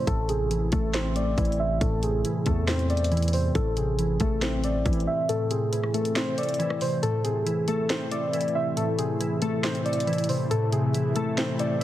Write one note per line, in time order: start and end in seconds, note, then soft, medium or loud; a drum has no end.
0.07 0.70 A1 loud
0.07 1.16 A2 medium
0.07 0.25 A4 loud
0.07 kick loud
0.07 closed hi-hat medium
0.29 1.38 C3 medium
0.29 0.70 G#4 medium
0.29 closed hi-hat medium
0.51 1.37 E3 medium
0.51 closed hi-hat medium
0.72 1.35 A1 loud
0.72 1.15 A3 medium
0.72 0.90 A4 medium
0.72 kick loud
0.72 closed hi-hat medium
0.94 2.03 C4 medium
0.94 1.12 C5 medium
0.94 snare loud
0.94 clap loud
0.94 closed hi-hat medium
1.16 2.25 A3 medium
1.16 1.57 D5 medium
1.16 closed hi-hat medium
1.38 1.79 A1 loud
1.38 2.23 E3 loud
1.38 kick loud
1.38 closed hi-hat medium
1.45 closed hi-hat medium
1.52 closed hi-hat soft
1.59 2.02 C3 medium
1.59 1.77 E5 medium
1.81 2.23 A1 loud
1.81 2.90 A2 medium
1.81 1.99 A4 medium
1.81 kick loud
1.81 closed hi-hat medium
2.03 3.12 C3 medium
2.03 2.44 G#4 medium
2.03 closed hi-hat medium
2.25 3.10 E3 medium
2.25 closed hi-hat medium
2.46 3.51 E2 loud
2.46 2.89 A3 loud
2.46 2.64 A4 medium
2.46 kick loud
2.46 closed hi-hat medium
2.68 3.55 C4 medium
2.68 2.86 C5 medium
2.68 snare loud
2.68 clap loud
2.68 closed hi-hat medium
2.79 closed hi-hat soft
2.90 3.55 A3 medium
2.90 3.31 D5 medium
2.90 closed hi-hat soft
2.97 closed hi-hat medium
3.04 closed hi-hat medium
3.12 3.55 E3 loud
3.12 closed hi-hat soft
3.17 closed hi-hat medium
3.22 closed hi-hat medium
3.28 closed hi-hat medium
3.33 3.55 C3 medium
3.33 3.51 C5 medium
3.33 open hi-hat medium
3.55 4.18 A1 loud
3.55 4.64 A2 medium
3.55 3.73 A4 loud
3.55 kick loud
3.55 closed hi-hat medium
3.77 4.86 C3 medium
3.77 4.18 G#4 medium
3.77 closed hi-hat medium
3.99 4.84 E3 medium
3.99 closed hi-hat medium
4.20 4.83 A1 loud
4.20 4.63 A3 loud
4.20 4.38 A4 medium
4.20 kick loud
4.20 closed hi-hat medium
4.42 5.51 C4 medium
4.42 4.60 C5 medium
4.42 snare loud
4.42 clap loud
4.42 closed hi-hat medium
4.64 5.73 A3 medium
4.64 5.05 D5 medium
4.64 closed hi-hat medium
4.85 5.06 A1 loud
4.85 5.71 E3 loud
4.85 kick loud
4.85 closed hi-hat medium
4.93 closed hi-hat medium
5.00 closed hi-hat soft
5.07 5.50 C3 medium
5.07 5.25 E5 medium
5.29 6.38 A2 medium
5.29 5.47 A4 loud
5.29 closed hi-hat medium
5.51 6.59 C3 medium
5.51 5.92 G#4 medium
5.51 closed hi-hat medium
5.72 6.58 E3 medium
5.72 closed hi-hat medium
5.83 cross-stick medium
5.94 6.36 A3 medium
5.94 6.12 A4 medium
5.94 closed hi-hat medium
6.05 closed hi-hat medium
6.16 7.03 C4 medium
6.16 6.34 C5 loud
6.16 snare loud
6.16 clap loud
6.16 closed hi-hat medium
6.37 7.03 A3 medium
6.37 6.79 D5 medium
6.37 closed hi-hat medium
6.43 closed hi-hat medium
6.49 closed hi-hat medium
6.54 closed hi-hat medium
6.59 7.03 E3 loud
6.59 closed hi-hat medium
6.70 cross-stick medium
6.81 7.03 C3 medium
6.81 6.99 C5 medium
6.81 open hi-hat medium
7.03 8.12 A2 medium
7.03 11.84 C3 medium
7.03 11.84 E3 medium
7.03 11.84 A3 medium
7.03 11.84 E4 medium
7.03 7.20 A4 loud
7.03 closed hi-hat medium
7.24 8.33 C3 medium
7.24 7.65 G#4 medium
7.24 closed hi-hat medium
7.46 8.32 E3 medium
7.46 closed hi-hat medium
7.68 8.10 A3 medium
7.68 7.86 A4 medium
7.68 closed hi-hat medium
7.90 8.98 C4 medium
7.90 8.07 C5 medium
7.90 snare loud
7.90 clap loud
7.90 closed hi-hat medium
8.11 9.20 A3 medium
8.11 8.52 D5 medium
8.11 closed hi-hat medium
8.33 9.19 E3 loud
8.33 closed hi-hat medium
8.41 closed hi-hat medium
8.48 closed hi-hat soft
8.55 8.97 C3 medium
8.55 8.73 E5 medium
8.77 9.86 A2 medium
8.77 8.95 A4 medium
8.77 closed hi-hat medium
8.99 10.07 C3 medium
8.99 9.39 G#4 medium
8.99 closed hi-hat medium
9.21 10.06 E3 medium
9.21 closed hi-hat medium
9.42 9.84 A3 loud
9.42 9.60 A4 medium
9.42 closed hi-hat medium
9.64 10.51 C4 medium
9.64 9.81 C5 medium
9.64 snare loud
9.64 clap loud
9.64 closed hi-hat medium
9.75 closed hi-hat soft
9.85 10.51 A3 medium
9.85 10.26 D5 medium
9.85 closed hi-hat soft
9.93 closed hi-hat medium
10.00 closed hi-hat medium
10.07 10.51 E3 loud
10.07 closed hi-hat soft
10.13 closed hi-hat medium
10.18 closed hi-hat medium
10.24 closed hi-hat medium
10.29 10.51 C3 medium
10.29 10.47 C5 medium
10.29 open hi-hat medium
10.51 11.60 A2 medium
10.51 10.68 A4 loud
10.51 closed hi-hat medium
10.72 11.81 C3 medium
10.72 11.13 G#4 medium
10.72 closed hi-hat medium
10.94 11.80 E3 medium
10.94 closed hi-hat medium
11.16 11.58 A3 loud
11.16 11.34 A4 medium
11.16 closed hi-hat medium
11.37 11.84 C4 medium
11.37 11.55 C5 medium
11.37 snare loud
11.37 clap loud
11.37 closed hi-hat medium
11.59 11.84 A3 medium
11.59 11.84 D5 medium
11.59 closed hi-hat medium